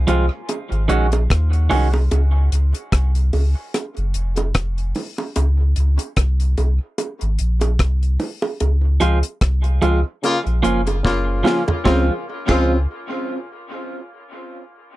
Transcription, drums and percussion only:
0.08 closed hi-hat medium
0.08 high bongo soft
0.49 closed hi-hat medium
0.49 high bongo medium
0.72 closed hi-hat soft
0.89 closed hi-hat medium
1.12 closed hi-hat medium
1.12 high bongo medium
1.30 kick medium
1.30 cross-stick loud
1.30 closed hi-hat medium
1.53 closed hi-hat soft
1.71 open hi-hat medium
1.71 low bongo medium
1.94 high bongo medium
2.11 closed hi-hat medium
2.11 high bongo medium
2.52 closed hi-hat medium
2.74 closed hi-hat medium
2.92 kick loud
2.92 cross-stick medium
2.92 closed hi-hat medium
3.15 closed hi-hat medium
3.33 open hi-hat medium
3.33 high bongo medium
3.74 cross-stick medium
3.74 closed hi-hat medium
3.74 high bongo medium
3.97 closed hi-hat soft
4.14 closed hi-hat medium
4.36 closed hi-hat medium
4.36 high bongo medium
4.54 kick medium
4.54 cross-stick loud
4.54 closed hi-hat medium
4.78 closed hi-hat soft
4.95 open hi-hat medium
4.95 low bongo medium
5.18 high bongo medium
5.36 closed hi-hat loud
5.36 high bongo medium
5.76 closed hi-hat medium
5.99 closed hi-hat medium
6.16 kick medium
6.16 cross-stick medium
6.16 closed hi-hat medium
6.40 closed hi-hat medium
6.57 closed hi-hat medium
6.57 high bongo medium
6.98 closed hi-hat medium
6.98 high bongo medium
7.21 closed hi-hat soft
7.39 closed hi-hat medium
7.61 closed hi-hat medium
7.61 high bongo medium
7.79 kick loud
7.79 cross-stick loud
7.79 closed hi-hat medium
8.03 closed hi-hat soft
8.20 open hi-hat medium
8.20 low bongo medium
8.42 high bongo medium
8.60 closed hi-hat medium
8.60 high bongo medium
9.00 closed hi-hat medium
9.23 closed hi-hat medium
9.41 kick loud
9.41 cross-stick medium
9.41 closed hi-hat medium
9.64 closed hi-hat medium
9.82 closed hi-hat medium
9.82 high bongo medium
10.23 closed hi-hat medium
10.23 high bongo medium
10.47 closed hi-hat soft
10.64 closed hi-hat medium
10.87 closed hi-hat medium
10.87 high bongo medium
11.05 kick medium
11.05 snare soft
11.45 snare medium
11.45 low bongo medium
11.68 floor tom medium
11.68 high bongo medium
11.85 kick loud
11.85 snare medium
11.85 high bongo medium
12.49 kick loud
12.49 crash medium
12.49 high bongo medium

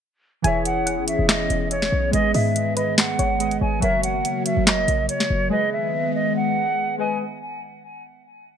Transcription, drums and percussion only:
0.44 closed hi-hat medium
0.65 closed hi-hat medium
0.87 closed hi-hat medium
1.08 closed hi-hat medium
1.29 snare loud
1.29 clap medium
1.29 closed hi-hat medium
1.50 closed hi-hat medium
1.71 closed hi-hat medium
1.82 snare medium
2.13 closed hi-hat medium
2.34 open hi-hat medium
2.56 closed hi-hat medium
2.77 closed hi-hat medium
2.98 snare loud
2.98 clap medium
2.98 closed hi-hat medium
3.19 closed hi-hat medium
3.40 closed hi-hat medium
3.51 closed hi-hat soft
3.82 closed hi-hat medium
4.03 closed hi-hat medium
4.25 closed hi-hat medium
4.46 closed hi-hat medium
4.67 snare loud
4.67 clap loud
4.67 closed hi-hat medium
4.88 closed hi-hat medium
5.09 closed hi-hat medium
5.20 snare medium

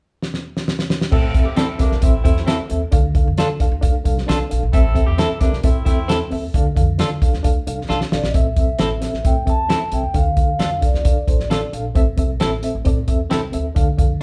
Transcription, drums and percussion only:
0.23 snare medium
0.34 snare soft
0.57 snare medium
0.68 snare medium
0.79 snare medium
0.90 snare medium
1.01 snare medium
1.12 kick loud
1.12 crash medium
1.34 kick medium
1.34 closed hi-hat medium
1.56 snare loud
1.56 closed hi-hat medium
1.79 kick medium
1.79 snare soft
1.79 closed hi-hat medium
1.92 snare soft
2.02 kick loud
2.02 closed hi-hat medium
2.25 kick medium
2.25 closed hi-hat medium
2.37 snare soft
2.48 snare medium
2.48 closed hi-hat medium
2.70 closed hi-hat medium
2.92 kick loud
2.92 closed hi-hat medium
3.15 kick loud
3.15 closed hi-hat medium
3.38 snare loud
3.38 closed hi-hat medium
3.60 kick medium
3.60 closed hi-hat medium
3.83 kick loud
3.83 closed hi-hat medium
4.05 kick medium
4.05 closed hi-hat medium
4.18 snare soft
4.29 snare medium
4.29 closed hi-hat medium
4.51 closed hi-hat medium
4.73 kick loud
4.73 closed hi-hat medium
4.95 kick medium
4.95 closed hi-hat medium
5.18 snare medium
5.18 closed hi-hat medium
5.41 kick medium
5.41 snare soft
5.41 closed hi-hat medium
5.53 snare soft
5.64 kick loud
5.64 closed hi-hat medium
5.86 kick medium
5.86 closed hi-hat medium
6.09 snare medium
6.09 closed hi-hat medium
6.31 open hi-hat soft
6.54 kick loud
6.54 closed hi-hat medium
6.76 kick loud
6.76 closed hi-hat medium
6.99 snare loud
6.99 closed hi-hat medium
7.22 kick medium
7.22 closed hi-hat medium
7.34 snare soft
7.44 kick medium
7.44 closed hi-hat medium
7.67 closed hi-hat medium
7.90 snare soft
8.01 snare medium
8.12 snare medium
8.24 snare medium
8.34 kick loud
8.34 closed hi-hat medium
8.57 kick medium
8.57 closed hi-hat medium
8.79 snare medium
8.79 closed hi-hat medium
9.02 snare soft
9.02 closed hi-hat medium
9.14 snare soft
9.25 kick medium
9.25 closed hi-hat medium
9.47 kick medium
9.47 closed hi-hat medium
9.70 snare medium
9.70 closed hi-hat medium
9.92 closed hi-hat medium
10.14 kick loud
10.14 closed hi-hat medium
10.37 kick medium
10.37 closed hi-hat medium
10.59 snare medium
10.59 closed hi-hat medium
10.82 kick medium
10.82 closed hi-hat medium
10.94 snare soft
11.05 kick medium
11.05 closed hi-hat medium
11.28 kick medium
11.28 closed hi-hat medium
11.40 snare soft
11.51 snare loud
11.51 closed hi-hat medium
11.73 closed hi-hat medium
11.95 kick loud
11.95 closed hi-hat medium
12.18 kick medium
12.18 closed hi-hat medium
12.40 snare medium
12.40 closed hi-hat medium
12.63 closed hi-hat medium
12.85 kick medium
12.85 closed hi-hat medium
13.08 kick medium
13.08 closed hi-hat medium
13.31 snare medium
13.31 closed hi-hat medium
13.53 closed hi-hat medium
13.76 kick loud
13.76 closed hi-hat medium
13.98 kick medium
13.98 closed hi-hat medium

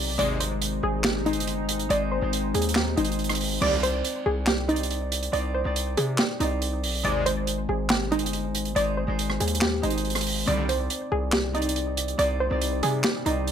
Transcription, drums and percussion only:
0.19 closed hi-hat medium
0.40 closed hi-hat medium
0.62 closed hi-hat medium
1.04 snare loud
1.04 clap loud
1.26 closed hi-hat soft
1.33 closed hi-hat medium
1.40 closed hi-hat medium
1.47 closed hi-hat medium
1.69 closed hi-hat medium
1.79 closed hi-hat soft
1.90 closed hi-hat medium
2.33 closed hi-hat medium
2.54 closed hi-hat medium
2.62 closed hi-hat medium
2.69 closed hi-hat medium
2.75 snare loud
2.75 clap medium
2.97 closed hi-hat medium
3.05 closed hi-hat medium
3.12 closed hi-hat medium
3.19 closed hi-hat soft
3.24 closed hi-hat medium
3.29 cross-stick medium
3.29 closed hi-hat medium
3.35 closed hi-hat medium
3.41 open hi-hat medium
3.62 crash loud
3.83 closed hi-hat medium
4.05 closed hi-hat medium
4.47 snare loud
4.47 clap medium
4.69 closed hi-hat soft
4.76 closed hi-hat medium
4.83 closed hi-hat medium
4.91 closed hi-hat medium
5.12 closed hi-hat medium
5.23 closed hi-hat soft
5.33 closed hi-hat medium
5.76 closed hi-hat medium
5.97 closed hi-hat medium
6.18 snare loud
6.18 clap medium
6.40 closed hi-hat medium
6.62 closed hi-hat medium
6.84 open hi-hat medium
7.05 closed hi-hat medium
7.26 closed hi-hat medium
7.47 closed hi-hat medium
7.89 snare loud
7.89 clap medium
8.12 closed hi-hat soft
8.19 closed hi-hat medium
8.26 closed hi-hat medium
8.33 closed hi-hat medium
8.55 closed hi-hat medium
8.65 closed hi-hat soft
8.76 closed hi-hat medium
9.19 closed hi-hat medium
9.30 cross-stick medium
9.40 closed hi-hat medium
9.48 closed hi-hat medium
9.55 closed hi-hat medium
9.61 snare loud
9.61 clap medium
9.83 closed hi-hat medium
9.90 closed hi-hat medium
9.98 closed hi-hat medium
10.05 closed hi-hat soft
10.10 closed hi-hat medium
10.15 cross-stick medium
10.15 closed hi-hat medium
10.21 closed hi-hat medium
10.27 open hi-hat loud
10.48 closed hi-hat medium
10.69 closed hi-hat medium
10.90 closed hi-hat medium
11.32 snare loud
11.32 clap medium
11.55 closed hi-hat soft
11.62 closed hi-hat medium
11.69 closed hi-hat medium
11.76 closed hi-hat medium
11.97 closed hi-hat medium
12.08 closed hi-hat soft
12.19 closed hi-hat medium
12.62 closed hi-hat medium
12.83 closed hi-hat medium
13.04 snare loud
13.04 clap loud
13.26 closed hi-hat medium
13.47 closed hi-hat medium

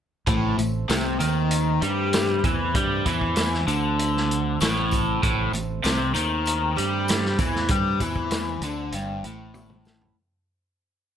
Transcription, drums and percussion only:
0.27 kick loud
0.27 closed hi-hat loud
0.27 tambourine soft
0.59 closed hi-hat medium
0.59 tambourine medium
0.89 snare loud
0.89 closed hi-hat medium
0.89 tambourine loud
1.20 closed hi-hat medium
1.20 tambourine medium
1.51 closed hi-hat loud
1.51 tambourine medium
1.82 closed hi-hat medium
1.82 tambourine soft
2.13 snare loud
2.13 closed hi-hat medium
2.13 tambourine loud
2.44 kick medium
2.44 closed hi-hat medium
2.44 tambourine medium
2.75 kick loud
2.75 closed hi-hat loud
2.75 tambourine soft
3.06 kick medium
3.06 closed hi-hat medium
3.06 tambourine medium
3.21 kick medium
3.36 snare loud
3.36 closed hi-hat medium
3.36 tambourine loud
3.54 snare soft
3.68 closed hi-hat medium
3.68 tambourine medium
3.99 closed hi-hat loud
3.99 tambourine medium
4.17 snare soft
4.31 closed hi-hat medium
4.60 snare loud
4.60 closed hi-hat medium
4.60 tambourine loud
4.91 kick medium
4.91 closed hi-hat medium
4.91 tambourine medium
5.23 kick loud
5.23 closed hi-hat medium
5.23 tambourine soft
5.53 closed hi-hat medium
5.53 tambourine medium
5.84 snare loud
5.84 closed hi-hat medium
5.84 tambourine loud
6.14 closed hi-hat medium
6.14 tambourine medium
6.46 closed hi-hat loud
6.46 tambourine medium
6.76 closed hi-hat medium
6.76 tambourine soft
7.08 snare loud
7.08 closed hi-hat loud
7.08 tambourine loud
7.25 snare soft
7.39 kick medium
7.39 closed hi-hat medium
7.39 tambourine medium
7.56 snare soft
7.68 kick loud
7.68 closed hi-hat loud
7.68 tambourine soft
8.00 kick medium
8.00 closed hi-hat medium
8.00 tambourine medium
8.16 kick medium
8.31 snare loud
8.31 closed hi-hat medium
8.31 tambourine loud
8.62 closed hi-hat medium
8.62 tambourine medium
8.92 closed hi-hat loud
8.92 tambourine medium
9.24 closed hi-hat medium
9.24 tambourine soft
9.54 high tom medium
9.54 tambourine loud
9.70 mid tom medium
9.85 snare medium
9.85 tambourine medium
10.01 floor tom medium

